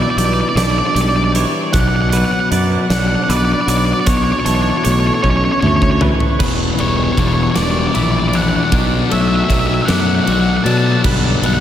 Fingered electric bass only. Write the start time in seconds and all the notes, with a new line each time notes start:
0.17 B1
0.55 B1
0.95 B1
1.74 B1
2.51 F#2
2.90 B1
3.29 B1
3.67 B1
4.07 B1
4.46 B1
4.86 B1
5.24 B1
5.62 D2
6.40 E1
6.80 E1
7.17 E1
7.57 E1
7.96 A#1
8.72 B1
9.12 B1
9.50 B1
9.89 F#2
10.28 B1
10.65 B2
11.04 B1
11.42 B1